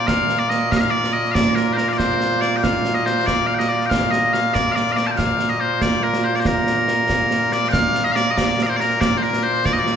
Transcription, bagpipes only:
0.00 9.96 A#2 medium
0.00 9.96 A#3 medium
0.00 9.96 F4 medium
0.07 0.39 F5 loud
0.39 0.50 D5 medium
0.50 0.72 D#5 loud
0.72 0.77 F5 loud
0.77 0.80 D#5 medium
0.77 0.90 F5 loud
0.90 1.13 D5 loud
1.13 1.31 D#5 loud
1.31 1.55 D5 loud
1.31 1.34 F5 loud
1.55 1.73 A#4 medium
1.73 1.89 A#4 medium
1.73 1.77 C5 medium
1.89 1.93 F5 medium
1.93 1.98 D5 medium
1.98 2.41 C5 medium
2.41 2.57 D5 medium
2.57 2.63 G5 medium
2.63 2.94 F5 medium
2.94 3.06 D#5 medium
3.06 3.26 C5 medium
3.26 3.47 D5 loud
3.47 3.54 F5 medium
3.54 3.59 G5 medium
3.59 3.69 D#5 medium
3.69 3.86 D5 medium
3.86 4.11 F5 loud
3.86 3.89 G5 loud
4.11 4.33 D#5 medium
4.33 4.54 F5 loud
4.54 4.72 D5 medium
4.72 4.92 D5 medium
4.72 4.76 F5 medium
4.92 4.96 F5 medium
4.96 5.07 D5 medium
5.07 5.11 A5 medium
5.11 5.17 G5 medium
5.17 5.49 F5 medium
5.49 5.60 D#5 medium
5.60 5.82 C5 loud
5.82 6.03 D5 medium
6.03 6.24 A#4 medium
6.24 6.35 C5 medium
6.35 6.40 D5 medium
6.40 6.47 C5 medium
6.47 7.52 A#4 medium
7.52 7.69 D5 medium
7.68 8.04 F5 loud
7.68 7.72 G5 loud
8.04 8.12 D#5 loud
8.12 8.31 D5 loud
8.12 8.16 F5 loud
8.31 8.37 D#5 medium
8.37 8.63 D5 loud
8.63 8.68 D5 medium
8.63 8.66 F5 medium
8.68 8.76 C5 medium
8.76 9.01 A#4 medium
8.76 8.80 D5 medium
9.01 9.17 D5 loud
9.17 9.22 C5 medium
9.22 9.43 A#4 medium
9.43 9.65 C5 loud
9.65 9.73 D5 loud
9.73 9.79 D#5 medium
9.79 9.96 D5 medium

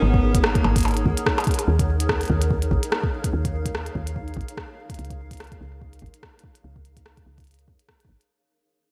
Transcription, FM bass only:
0.02 0.59 G#1 loud
0.64 1.05 G#1 medium
1.06 1.13 D#2 medium
1.68 2.24 D#2 medium
2.30 2.71 D#2 medium
2.71 2.78 A#1 medium
3.33 3.90 D#2 medium
3.95 4.36 D#2 medium
4.37 4.44 A#1 medium
4.99 5.55 C#2 medium
5.61 6.02 C#2 medium
6.02 6.09 G#1 medium
6.64 7.21 C#2 medium
7.26 7.69 C#2 medium
7.68 7.75 F2 medium
8.09 8.16 G#1 medium

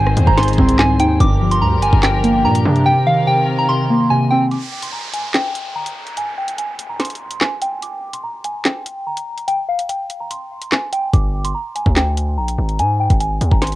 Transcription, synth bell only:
0.00 0.25 G#5 medium
0.27 0.36 A#5 medium
0.38 0.77 C6 medium
0.79 0.96 G#5 medium
1.00 1.17 G5 medium
1.21 1.50 D6 medium
1.51 1.60 C6 medium
1.62 1.79 A#5 medium
1.83 1.99 G#5 medium
2.03 2.42 G5 medium
2.45 2.84 A#5 medium
2.86 3.03 G5 loud
3.06 3.23 F5 medium
3.27 3.56 G5 medium
3.58 3.67 A#5 medium
3.69 4.08 C6 medium
4.10 4.27 G#5 medium
4.31 4.47 G5 medium
4.51 4.81 D6 loud
4.82 4.91 C6 medium
4.92 5.09 A#5 medium
5.13 5.30 G#5 medium
5.34 5.73 G5 medium
5.75 6.14 A#5 medium
6.17 6.34 G#5 loud
6.38 6.55 G5 medium
6.58 6.87 G#5 medium
6.89 6.98 A#5 medium
7.00 7.39 C6 medium
7.41 7.58 G#5 medium
7.62 7.79 G5 medium
7.83 8.12 D6 medium
8.14 8.22 C6 medium
8.24 8.40 A#5 medium
8.45 8.61 G#5 medium
8.65 9.04 G5 medium
9.07 9.46 A#5 medium
9.48 9.65 G5 loud
9.69 9.85 F5 medium
9.89 10.18 G5 medium
10.21 10.29 A#5 medium
10.31 10.70 C6 medium
10.72 10.89 G#5 medium
10.93 11.10 G5 medium
11.13 11.43 D6 loud
11.45 11.53 C6 medium
11.54 11.71 A#5 medium
11.75 11.92 G#5 medium
11.96 12.35 G5 medium
12.38 12.77 A#5 medium
12.79 12.96 G#5 loud
13.00 13.17 G5 medium
13.20 13.50 G#5 medium
13.51 13.60 A#5 medium
13.62 13.76 C6 medium

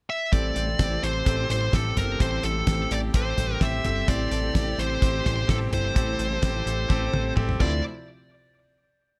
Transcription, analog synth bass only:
0.33 0.52 A1 loud
0.56 0.75 A1 medium
0.79 0.99 A1 medium
1.03 1.22 A1 medium
1.26 1.46 A1 loud
1.50 1.69 A1 loud
1.73 1.93 A1 loud
1.97 2.16 G1 medium
2.20 2.40 A1 loud
2.44 2.63 A1 medium
2.67 2.86 A1 loud
2.91 3.10 A1 loud
3.14 3.33 A1 loud
3.37 3.57 A1 medium
3.61 3.80 A1 loud
3.85 4.04 G1 medium
4.08 4.27 A1 loud
4.31 4.51 A1 loud
4.55 4.74 A1 loud
4.78 4.98 A1 loud
5.02 5.21 A1 loud
5.25 5.45 A1 loud
5.49 5.68 A1 loud
5.72 5.92 G1 medium
5.96 6.15 A1 loud
6.19 6.39 A1 medium
6.43 6.62 A1 loud
6.66 6.86 A1 loud
6.90 7.09 A1 loud
7.13 7.32 A1 medium
7.37 7.56 A1 loud
7.61 7.82 D2 medium

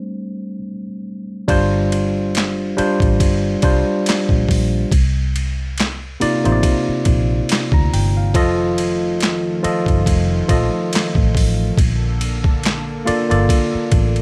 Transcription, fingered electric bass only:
1.49 2.74 G1 loud
2.79 muted fingered electric bass stroke soft
3.01 3.21 A1 medium
3.21 3.55 G1 medium
3.64 3.82 C2 medium
4.30 4.45 A#1 medium
4.50 4.83 A#1 loud
4.93 6.17 C2 loud
6.23 muted fingered electric bass stroke soft
6.46 6.61 A1 medium
6.89 muted fingered electric bass stroke soft
7.07 7.41 A#1 medium
7.73 7.88 D2 medium
7.94 8.35 G1 loud
8.35 9.59 F1 loud
9.65 muted fingered electric bass stroke medium
9.87 10.03 G1 loud
10.07 10.41 F1 loud
10.50 10.68 A#1 medium
11.16 11.31 A1 medium
11.36 11.69 A1 medium
11.78 13.02 A#1 loud
13.09 muted fingered electric bass stroke medium
13.32 13.46 G1 loud
13.75 muted fingered electric bass stroke soft
13.93 14.22 A1 medium

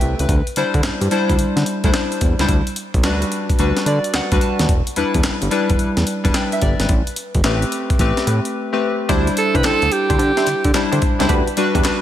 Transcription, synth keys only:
0.00 0.31 A3 medium
0.00 0.30 C4 medium
0.00 0.31 G4 medium
0.00 0.30 A4 medium
0.00 0.20 B4 loud
0.00 0.18 E5 medium
0.00 0.31 G5 medium
0.20 0.46 B4 medium
0.57 1.09 G3 medium
0.57 1.09 D4 medium
0.57 1.09 E4 medium
0.57 1.09 C5 loud
1.11 1.78 G3 medium
1.11 1.78 D4 medium
1.11 1.78 E4 medium
1.11 1.78 C5 loud
1.84 2.34 G3 medium
1.84 2.34 D4 medium
1.84 2.34 E4 medium
1.84 2.35 C5 medium
2.40 2.49 G3 medium
2.40 2.49 D4 medium
2.40 2.49 E4 medium
2.40 2.50 C5 loud
3.04 3.56 G3 medium
3.04 3.57 D4 medium
3.04 3.57 F#4 medium
3.04 3.57 B4 medium
3.59 4.26 G3 medium
3.59 4.26 D4 medium
3.59 4.26 F#4 medium
3.59 4.26 B4 medium
3.87 4.13 D5 medium
4.15 4.40 F#5 medium
4.32 4.69 G3 medium
4.32 4.69 D4 medium
4.32 4.69 F#4 medium
4.32 4.70 B4 medium
4.42 4.67 A5 medium
4.96 5.49 G3 medium
4.96 5.49 D4 medium
4.96 5.49 E4 medium
4.96 5.49 B4 loud
5.51 6.18 G3 loud
5.51 6.18 D4 medium
5.51 6.18 E4 medium
5.51 6.19 B4 loud
6.24 6.74 G3 medium
6.24 6.74 D4 medium
6.24 6.75 E4 medium
6.24 6.34 B4 loud
6.35 6.52 G5 medium
6.53 6.62 E5 medium
6.62 6.79 D5 medium
6.81 7.06 B4 medium
7.44 7.97 A3 medium
7.44 7.97 C4 medium
7.44 7.97 G4 medium
7.44 7.97 B4 loud
8.00 8.66 A3 medium
8.00 8.66 C4 medium
8.00 8.67 G4 medium
8.00 8.67 B4 loud
8.73 9.09 A3 medium
8.73 9.10 C4 medium
8.73 9.10 G4 medium
8.73 9.10 B4 medium
9.09 10.14 G3 loud
9.09 10.14 D4 loud
9.09 10.15 E4 medium
9.09 10.15 C5 loud
10.74 11.16 G3 loud
10.74 11.16 D4 medium
10.74 11.17 E4 medium
10.74 11.17 C5 loud
11.20 11.30 G3 loud
11.20 11.30 D4 medium
11.20 11.30 E4 medium
11.20 11.30 C5 loud
11.57 11.83 G3 loud
11.57 11.83 D4 loud
11.57 11.84 F#4 medium
11.57 11.84 B4 loud
11.85 12.02 G3 medium
11.85 12.02 D4 medium
11.85 12.02 F#4 medium
11.85 12.02 B4 loud

